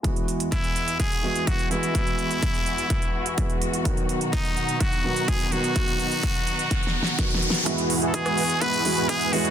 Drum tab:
HH |x--x--x--x--x--x--x--x--x--x-----x--x--x--x--x--|x--x--x--x--x--x--x--x--x--x-----x--x--x--x--x--|x--x--x--x--x--x--x--x--x--x-----x--x--x--x--x--|x--x--x--x--x--x--x--x--x--x-----x--x--x--x--x--|
SD |------------------------------------------------|------------------------------------------------|------------------------------------------------|------------------------o---o---o---o---o---o---|
BD |o-----------o-----------o-----------o-----------|o-----------o-----------o-----------o-----------|o-----------o-----------o-----------o-----------|o-----------o-----------o-----------o-----------|

HH |x--x--o--x--x--x--o--x--x--x--o--x--x--x--o--x--|
SD |---------------r--------------------------------|
BD |o-----------o-----------o-----------o-----------|